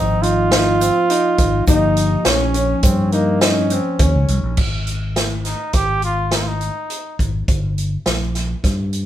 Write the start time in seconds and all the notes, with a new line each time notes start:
Already playing: G#1 F3 A#3 C4 D#4 G5
0.22 D#4 F4, closed hi-hat
0.51 D#4, snare, closed hi-hat, shaker
0.81 C4, closed hi-hat, shaker
1.10 D#4, closed hi-hat
1.38 G#1, kick, closed hi-hat
1.67 G1 F3 A#3 D#4 G4, kick, closed hi-hat, shaker
1.97 closed hi-hat, shaker
2.25 A#1 C#4, snare, closed hi-hat
2.54 C#4, closed hi-hat, shaker
2.83 G2 C4, kick, closed hi-hat, shaker
3.12 A#3 D#4, closed hi-hat
3.41 C#4 D#4, snare, closed hi-hat
3.70 C4, closed hi-hat
3.99 D#2 C#4, kick, closed hi-hat
4.15 C#2
4.28 C2, closed hi-hat
4.43 A#1
4.57 G#1, kick, crash
4.87 closed hi-hat
5.16 snare, closed hi-hat
5.45 D#4, snare, closed hi-hat
5.73 G#1 G4, kick, snare, closed hi-hat
6.02 F4, closed hi-hat
6.31 D#4, snare, closed hi-hat
6.42 F4
6.47 D#4
6.61 closed hi-hat
6.90 closed hi-hat
7.19 G#1, kick, closed hi-hat
7.48 G1, kick, closed hi-hat
7.78 closed hi-hat
8.06 A#1, snare, closed hi-hat
8.35 snare, closed hi-hat
8.64 G2, kick, snare, closed hi-hat
8.93 closed hi-hat